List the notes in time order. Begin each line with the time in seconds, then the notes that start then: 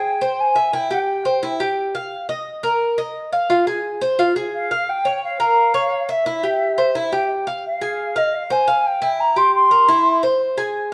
Already playing: G#4 G5
0.21 C5
0.40 G#5
0.56 E5
0.73 E4 G5
0.91 G4 G5
1.25 C5
1.43 E4
1.60 G4
1.95 F5
2.29 D#5
2.63 A#4
2.98 D#5
3.32 F5
3.50 F4
3.67 G#4
4.01 C5
4.19 F4
4.36 G#4
4.55 F5
4.71 F5
4.89 G5
5.05 C#5
5.24 F5
5.40 A#4 F5
5.74 C#5
6.09 E5
6.26 E4
6.43 G4
6.78 C5
6.95 E4
7.12 G4
7.47 F5
7.66 F5
7.81 G#4
8.16 D#5 F5
8.34 F5
8.50 C5 G#5
8.68 F5
8.86 G5
9.02 E4
9.20 A#5
9.36 G4 C6
9.54 C6
9.71 A#4
9.88 E4
10.23 C5
10.58 G#4